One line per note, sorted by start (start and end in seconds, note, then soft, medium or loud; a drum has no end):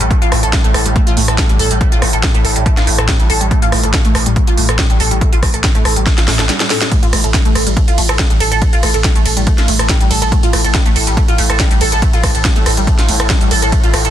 0.00 0.11 A1 medium
0.00 6.90 A2 medium
0.00 0.06 G3 medium
0.00 closed hi-hat medium
0.11 0.20 A3 medium
0.11 kick loud
0.11 closed hi-hat medium
0.22 0.32 A1 medium
0.22 0.27 F4 loud
0.22 closed hi-hat medium
0.32 0.43 A1 loud
0.32 0.41 A3 medium
0.32 cross-stick loud
0.32 open hi-hat loud
0.43 0.53 A1 medium
0.43 0.46 A4 medium
0.43 closed hi-hat medium
0.53 0.57 G3 medium
0.53 kick loud
0.53 snare loud
0.53 closed hi-hat medium
0.64 0.74 A1 medium
0.64 0.68 A3 loud
0.64 closed hi-hat medium
0.74 0.85 A1 loud
0.74 0.83 A4 medium
0.74 cross-stick loud
0.74 open hi-hat loud
0.86 0.96 A1 medium
0.86 0.91 G3 medium
0.86 closed hi-hat medium
0.96 0.99 A3 medium
0.96 kick loud
0.96 closed hi-hat medium
1.07 1.17 A1 medium
1.07 1.12 F4 loud
1.07 closed hi-hat medium
1.17 1.28 A1 loud
1.17 1.23 A3 medium
1.17 open hi-hat loud
1.28 1.38 A1 medium
1.28 1.31 A4 medium
1.28 cross-stick loud
1.28 closed hi-hat medium
1.38 1.42 G3 medium
1.38 kick loud
1.38 snare loud
1.38 closed hi-hat medium
1.49 1.59 A1 medium
1.49 1.58 G3 medium
1.49 closed hi-hat medium
1.59 1.70 A1 loud
1.59 1.69 A4 loud
1.59 open hi-hat loud
1.71 1.81 A1 medium
1.71 1.76 G3 medium
1.71 closed hi-hat medium
1.81 1.90 A3 medium
1.81 kick loud
1.81 closed hi-hat medium
1.92 2.02 A1 medium
1.92 1.97 F4 loud
1.92 closed hi-hat medium
2.02 2.13 A1 loud
2.02 2.11 A3 medium
2.02 cross-stick loud
2.02 open hi-hat loud
2.13 2.23 A1 medium
2.13 2.17 A4 medium
2.13 closed hi-hat medium
2.23 2.27 G3 medium
2.23 kick loud
2.23 snare loud
2.23 closed hi-hat medium
2.35 2.44 A1 medium
2.35 2.38 A3 loud
2.35 closed hi-hat medium
2.45 2.55 A1 loud
2.45 2.54 A4 medium
2.45 open hi-hat loud
2.56 2.66 A1 medium
2.56 2.61 G3 medium
2.56 closed hi-hat medium
2.66 2.70 A3 medium
2.66 kick loud
2.66 closed hi-hat medium
2.77 2.87 A1 medium
2.77 2.83 F4 loud
2.77 snare soft
2.77 closed hi-hat medium
2.87 2.98 A1 loud
2.87 2.93 A3 medium
2.87 open hi-hat loud
2.98 3.08 A1 medium
2.98 3.02 A4 medium
2.98 cross-stick loud
2.98 closed hi-hat medium
3.08 3.12 G3 medium
3.08 kick loud
3.08 snare loud
3.08 closed hi-hat medium
3.20 3.29 A1 medium
3.20 3.28 G3 medium
3.20 closed hi-hat medium
3.30 3.40 A1 loud
3.30 3.39 A4 loud
3.30 open hi-hat loud
3.41 3.51 A1 medium
3.41 3.46 G3 medium
3.41 closed hi-hat medium
3.51 3.60 A3 medium
3.51 kick loud
3.51 closed hi-hat medium
3.62 3.72 A1 medium
3.62 3.68 F4 loud
3.62 closed hi-hat medium
3.72 3.83 A1 loud
3.72 3.81 A3 medium
3.72 cross-stick loud
3.72 open hi-hat loud
3.84 3.94 A1 medium
3.84 3.87 A4 medium
3.84 closed hi-hat medium
3.94 3.97 G3 medium
3.94 kick loud
3.94 snare loud
3.94 closed hi-hat medium
4.05 4.14 A1 medium
4.05 4.08 A3 loud
4.05 closed hi-hat medium
4.15 4.26 A1 loud
4.15 4.24 A4 medium
4.15 cross-stick loud
4.15 open hi-hat loud
4.26 4.36 A1 medium
4.26 4.32 G3 medium
4.26 closed hi-hat medium
4.36 4.40 A3 medium
4.36 kick loud
4.36 closed hi-hat medium
4.47 4.57 A1 medium
4.47 4.53 F4 loud
4.47 closed hi-hat medium
4.57 4.68 A1 loud
4.57 4.63 A3 medium
4.57 open hi-hat loud
4.69 4.79 A1 medium
4.69 4.72 A4 medium
4.69 cross-stick loud
4.69 closed hi-hat medium
4.79 4.82 G3 medium
4.79 kick loud
4.79 snare loud
4.79 closed hi-hat medium
4.90 5.00 A1 medium
4.90 4.98 G3 medium
4.90 closed hi-hat medium
5.00 5.11 A1 loud
5.00 5.09 A4 loud
5.00 open hi-hat loud
5.11 5.21 A1 medium
5.11 5.17 G3 medium
5.11 closed hi-hat medium
5.21 5.30 A3 medium
5.21 kick loud
5.21 closed hi-hat medium
5.32 5.42 A1 medium
5.32 5.38 F4 loud
5.32 closed hi-hat medium
5.43 5.53 A1 loud
5.43 5.52 A3 medium
5.43 kick medium
5.43 cross-stick medium
5.43 open hi-hat loud
5.54 5.64 A1 medium
5.54 5.57 A4 medium
5.54 closed hi-hat medium
5.64 5.67 G3 medium
5.64 kick loud
5.64 snare loud
5.64 closed hi-hat medium
5.75 5.85 A1 medium
5.75 5.78 A3 loud
5.75 closed hi-hat medium
5.85 5.96 A1 loud
5.85 5.94 A4 medium
5.85 cross-stick medium
5.85 open hi-hat loud
5.96 6.06 A1 medium
5.96 6.02 G3 medium
5.96 closed hi-hat medium
6.06 6.10 A3 medium
6.06 kick loud
6.06 snare medium
6.06 closed hi-hat medium
6.18 6.27 A1 medium
6.18 6.23 F4 loud
6.18 snare medium
6.18 closed hi-hat medium
6.28 6.38 A1 loud
6.28 6.34 A3 medium
6.28 snare medium
6.28 open hi-hat loud
6.39 6.49 A1 medium
6.39 6.42 A4 medium
6.39 snare medium
6.39 closed hi-hat medium
6.49 6.53 G3 medium
6.49 snare medium
6.49 closed hi-hat medium
6.60 6.68 G3 medium
6.60 snare medium
6.60 closed hi-hat medium
6.70 6.79 A4 loud
6.70 snare loud
6.70 open hi-hat loud
6.81 6.87 G3 medium
6.81 snare medium
6.81 closed hi-hat medium
6.91 14.10 A2 medium
6.91 7.01 A3 medium
6.91 kick loud
6.91 closed hi-hat medium
6.91 ride medium
7.03 7.12 A1 medium
7.03 7.08 F4 loud
7.03 closed hi-hat medium
7.13 7.24 A1 loud
7.13 7.22 A3 medium
7.13 cross-stick medium
7.13 open hi-hat loud
7.13 ride medium
7.24 7.34 A1 medium
7.24 7.27 A4 medium
7.24 closed hi-hat medium
7.34 7.38 G3 medium
7.34 kick loud
7.34 snare loud
7.34 closed hi-hat medium
7.34 ride medium
7.45 7.55 A1 medium
7.45 7.49 A3 loud
7.45 closed hi-hat medium
7.55 7.66 A1 loud
7.55 7.64 A4 medium
7.55 cross-stick medium
7.55 open hi-hat loud
7.55 ride medium
7.67 7.76 A1 medium
7.67 7.72 G3 medium
7.67 closed hi-hat medium
7.77 7.80 A3 medium
7.77 kick loud
7.77 closed hi-hat medium
7.77 ride medium
7.88 7.97 A1 medium
7.88 7.93 F4 loud
7.88 closed hi-hat medium
7.98 8.09 A1 loud
7.98 8.04 A3 medium
7.98 open hi-hat loud
7.98 ride medium
8.09 8.19 A1 medium
8.09 8.12 A4 medium
8.09 cross-stick medium
8.09 closed hi-hat medium
8.19 8.23 G3 medium
8.19 kick loud
8.19 snare loud
8.19 closed hi-hat medium
8.19 ride medium
8.30 8.40 A1 medium
8.30 8.38 G3 medium
8.30 closed hi-hat medium
8.40 8.51 A1 loud
8.40 8.49 A4 loud
8.40 open hi-hat loud
8.40 ride medium
8.52 8.62 A1 medium
8.52 8.60 A4 loud
8.52 closed hi-hat medium
8.62 8.71 A3 medium
8.62 kick loud
8.62 closed hi-hat medium
8.62 ride medium
8.73 8.83 A1 medium
8.73 8.78 F4 loud
8.73 closed hi-hat medium
8.83 8.94 A1 loud
8.83 8.92 A3 medium
8.83 cross-stick medium
8.83 open hi-hat loud
8.83 ride medium
8.94 9.04 A1 medium
8.94 8.98 A4 medium
8.94 closed hi-hat medium
9.04 9.08 G3 medium
9.04 kick loud
9.04 snare loud
9.04 closed hi-hat medium
9.04 ride medium
9.16 9.25 A1 medium
9.16 9.19 A3 loud
9.16 closed hi-hat medium
9.26 9.36 A1 medium
9.26 9.35 A4 medium
9.26 open hi-hat loud
9.26 ride medium
9.37 9.47 A1 medium
9.37 9.42 G3 medium
9.37 closed hi-hat medium
9.47 9.51 A3 medium
9.47 kick loud
9.47 closed hi-hat medium
9.47 ride medium
9.58 9.68 A1 medium
9.58 9.63 F4 loud
9.58 snare soft
9.58 closed hi-hat medium
9.68 9.79 A1 loud
9.68 9.74 A3 medium
9.68 open hi-hat loud
9.68 ride medium
9.79 9.89 A1 medium
9.79 9.83 A4 medium
9.79 cross-stick medium
9.79 closed hi-hat medium
9.89 9.93 G3 medium
9.89 kick loud
9.89 snare loud
9.89 closed hi-hat medium
9.89 ride medium
10.01 10.10 A1 medium
10.01 10.09 G3 medium
10.01 closed hi-hat medium
10.11 10.21 A1 loud
10.11 10.20 A4 loud
10.11 open hi-hat loud
10.11 ride medium
10.22 10.32 A1 medium
10.22 10.30 A4 loud
10.22 closed hi-hat medium
10.32 10.41 A3 medium
10.32 kick loud
10.32 closed hi-hat medium
10.32 ride medium
10.43 10.53 A1 medium
10.43 10.49 F4 loud
10.43 closed hi-hat medium
10.53 10.64 A1 loud
10.53 10.62 A3 medium
10.53 cross-stick loud
10.53 open hi-hat loud
10.53 ride medium
10.64 10.74 A1 medium
10.64 10.68 A4 medium
10.64 closed hi-hat medium
10.74 10.78 G3 medium
10.74 kick loud
10.74 snare loud
10.74 closed hi-hat medium
10.74 ride medium
10.86 10.95 A1 medium
10.86 10.89 A3 loud
10.86 closed hi-hat medium
10.96 11.07 A1 medium
10.96 11.05 A4 medium
10.96 open hi-hat loud
10.96 ride medium
11.07 11.17 A1 medium
11.07 11.12 G3 medium
11.07 closed hi-hat medium
11.17 11.21 A3 medium
11.17 kick loud
11.17 closed hi-hat medium
11.17 ride medium
11.28 11.38 A1 medium
11.28 11.34 F4 loud
11.28 closed hi-hat medium
11.38 11.49 A1 loud
11.38 11.44 A3 medium
11.38 open hi-hat loud
11.38 ride medium
11.50 11.60 A1 medium
11.50 11.53 A4 medium
11.50 cross-stick medium
11.50 closed hi-hat medium
11.60 11.63 G3 medium
11.60 kick loud
11.60 snare loud
11.60 closed hi-hat medium
11.60 ride medium
11.71 11.81 A1 medium
11.71 11.79 G3 medium
11.71 closed hi-hat medium
11.81 11.92 A1 loud
11.81 11.90 A4 loud
11.81 open hi-hat loud
11.81 ride medium
11.92 12.02 A1 medium
11.92 12.00 A4 loud
11.92 closed hi-hat medium
12.02 12.11 A3 medium
12.02 kick loud
12.02 closed hi-hat medium
12.02 ride medium
12.13 12.23 A1 medium
12.13 12.19 F4 loud
12.13 closed hi-hat medium
12.23 12.34 A1 loud
12.23 12.33 A3 medium
12.23 kick medium
12.23 cross-stick loud
12.23 open hi-hat loud
12.23 ride medium
12.35 12.45 A1 medium
12.35 12.38 A4 medium
12.35 closed hi-hat medium
12.45 12.48 G3 medium
12.45 kick loud
12.45 snare loud
12.45 closed hi-hat medium
12.45 ride medium
12.56 12.66 A1 medium
12.56 12.59 A3 loud
12.56 closed hi-hat medium
12.66 12.77 A1 loud
12.66 12.75 A4 medium
12.66 cross-stick medium
12.66 open hi-hat loud
12.66 ride medium
12.77 12.87 A1 medium
12.77 12.83 G3 medium
12.77 closed hi-hat medium
12.87 12.91 A3 medium
12.87 kick loud
12.87 closed hi-hat medium
12.87 ride medium
12.98 13.08 A1 medium
12.98 13.04 F4 loud
12.98 snare soft
12.98 closed hi-hat medium
13.09 13.19 A1 loud
13.09 13.15 A3 medium
13.09 open hi-hat loud
13.09 ride medium
13.20 13.30 A1 medium
13.20 13.23 A4 medium
13.20 cross-stick loud
13.20 closed hi-hat medium
13.30 13.33 G3 medium
13.30 kick loud
13.30 snare loud
13.30 closed hi-hat medium
13.30 ride medium
13.41 13.51 A1 medium
13.41 13.49 G3 medium
13.41 closed hi-hat medium
13.51 13.62 A1 loud
13.51 13.60 A4 loud
13.51 open hi-hat loud
13.51 ride medium
13.62 13.72 A1 medium
13.62 13.70 A4 loud
13.62 closed hi-hat medium
13.72 13.81 A3 medium
13.72 kick loud
13.72 closed hi-hat medium
13.72 ride medium
13.84 13.93 A1 medium
13.84 13.89 F4 loud
13.84 closed hi-hat medium
13.94 14.04 A1 loud
13.94 14.03 A3 medium
13.94 cross-stick loud
13.94 open hi-hat loud
13.94 ride medium
14.05 14.10 A1 medium
14.05 14.08 A4 medium
14.05 closed hi-hat medium